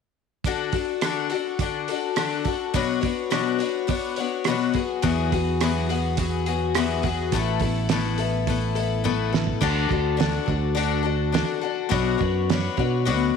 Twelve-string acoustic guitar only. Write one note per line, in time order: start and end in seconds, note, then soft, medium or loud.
0.46 0.74 D3 medium
0.46 0.74 D4 medium
0.46 0.72 F#4 medium
0.46 0.71 A4 medium
0.72 1.01 D4 soft
0.72 1.02 F#4 soft
0.72 1.02 A4 soft
1.02 1.31 D3 medium
1.02 1.31 D4 medium
1.02 1.30 F#4 medium
1.02 1.29 A4 medium
1.30 1.60 D4 soft
1.30 1.60 F#4 soft
1.30 1.60 A4 medium
1.60 1.89 D3 medium
1.60 1.89 D4 soft
1.60 1.89 F#4 medium
1.60 1.88 A4 medium
1.89 2.16 D4 soft
1.89 2.16 F#4 soft
1.89 2.17 A4 soft
2.16 2.46 D3 medium
2.16 2.46 D4 medium
2.16 2.46 F#4 medium
2.16 2.43 A4 medium
2.44 2.74 D4 soft
2.44 2.75 F#4 soft
2.44 2.74 A4 medium
2.74 3.03 B2 medium
2.74 3.03 F#3 medium
2.74 3.03 B3 medium
2.74 3.03 D4 medium
2.74 3.00 F#4 medium
2.74 3.00 C#5 medium
3.01 3.30 B3 soft
3.01 3.30 D4 soft
3.01 3.31 F#4 soft
3.01 3.31 C#5 soft
3.30 3.60 B2 medium
3.30 3.60 F#3 medium
3.30 3.60 B3 medium
3.30 3.60 D4 medium
3.30 3.59 F#4 medium
3.30 3.57 C#5 medium
3.59 3.86 B3 soft
3.59 3.88 D4 soft
3.59 3.89 F#4 soft
3.59 3.89 C#5 medium
3.87 4.17 B3 medium
3.87 4.18 D4 medium
3.87 4.18 F#4 medium
3.87 4.16 C#5 medium
4.17 4.46 B3 soft
4.17 4.47 D4 soft
4.17 4.48 F#4 soft
4.17 4.47 C#5 medium
4.47 4.76 B2 medium
4.47 4.76 F#3 medium
4.47 4.76 B3 medium
4.47 4.76 D4 medium
4.47 4.75 F#4 medium
4.47 4.74 C#5 medium
4.75 5.02 F#3 soft
4.75 5.02 B3 soft
4.75 5.03 F#4 soft
4.75 5.03 G#4 medium
5.02 5.32 E2 medium
5.02 5.33 E3 medium
5.02 5.33 F#3 medium
5.02 5.33 B3 medium
5.02 5.32 F#4 medium
5.02 5.31 G#4 medium
5.32 5.61 F#3 soft
5.32 5.62 B3 soft
5.32 5.62 F#4 soft
5.32 5.62 G#4 medium
5.61 5.90 E2 medium
5.61 5.91 E3 medium
5.61 5.91 F#3 medium
5.61 5.90 B3 medium
5.61 5.89 F#4 medium
5.61 5.88 G#4 medium
5.89 6.16 F#3 soft
5.89 6.17 B3 soft
5.89 6.18 F#4 soft
5.89 6.19 G#4 medium
6.17 6.47 F#3 medium
6.17 6.47 B3 medium
6.17 6.46 F#4 medium
6.17 6.45 G#4 medium
6.46 6.75 F#3 soft
6.46 6.76 B3 soft
6.46 6.77 F#4 soft
6.46 6.76 G#4 soft
6.76 7.05 E2 medium
6.76 7.05 E3 medium
6.76 7.05 F#3 medium
6.76 7.04 B3 medium
6.76 7.03 F#4 medium
6.76 7.02 G#4 medium
7.03 7.33 F#3 soft
7.03 7.33 B3 soft
7.03 7.34 F#4 medium
7.03 7.33 G#4 soft
7.33 7.63 A2 medium
7.33 7.62 A3 medium
7.33 7.63 B3 medium
7.33 7.62 E4 medium
7.33 7.61 A4 medium
7.62 7.90 B3 soft
7.62 7.91 E4 soft
7.62 7.91 A4 soft
7.90 8.19 A2 medium
7.90 8.20 A3 medium
7.90 8.20 B3 medium
7.90 8.19 E4 medium
7.90 8.17 A4 medium
8.19 8.48 B3 soft
8.19 8.49 E4 soft
8.19 8.48 A4 medium
8.48 8.77 A3 medium
8.48 8.78 B3 medium
8.48 8.76 E4 medium
8.48 8.74 A4 medium
8.75 9.04 B3 soft
8.75 9.04 E4 soft
8.75 9.04 A4 medium
9.04 9.34 A2 medium
9.04 9.34 A3 medium
9.04 9.34 B3 medium
9.04 9.33 E4 medium
9.04 9.31 A4 medium
9.32 9.61 B3 soft
9.32 9.62 E4 soft
9.32 9.62 A4 soft
9.61 9.91 D3 medium
9.61 9.91 D4 medium
9.61 9.90 F#4 medium
9.61 9.88 A4 medium
9.89 10.17 D4 soft
9.89 10.18 F#4 soft
9.89 10.19 A4 medium
10.17 10.48 D3 medium
10.17 10.48 D4 medium
10.17 10.47 F#4 medium
10.17 10.45 A4 medium
10.46 10.75 D4 soft
10.46 10.75 F#4 soft
10.46 10.76 A4 soft
10.75 11.05 D3 medium
10.75 11.05 D4 medium
10.75 11.03 F#4 medium
10.75 11.02 A4 medium
11.03 11.32 D4 soft
11.03 11.33 F#4 soft
11.03 11.33 A4 medium
11.32 11.63 D3 medium
11.32 11.63 D4 medium
11.32 11.62 F#4 medium
11.32 11.60 A4 medium
11.61 11.90 D4 soft
11.61 11.90 F#4 medium
11.61 11.91 A4 medium
11.89 12.19 B2 medium
11.89 12.20 F#3 medium
11.89 12.21 B3 medium
11.89 12.20 D4 medium
11.89 12.18 F#4 medium
11.89 12.17 C#5 medium
12.18 12.48 B3 soft
12.18 12.50 D4 soft
12.18 12.49 F#4 medium
12.18 12.48 C#5 medium
12.50 12.78 B3 medium
12.50 12.78 D4 medium
12.50 12.78 F#4 medium
12.50 12.76 C#5 medium
12.77 13.05 B3 soft
12.77 13.06 D4 medium
12.77 13.06 F#4 soft
12.77 13.06 C#5 medium
13.05 13.35 B2 medium
13.05 13.35 F#3 medium
13.05 13.36 B3 medium
13.05 13.36 D4 medium
13.05 13.35 F#4 medium
13.05 13.34 C#5 medium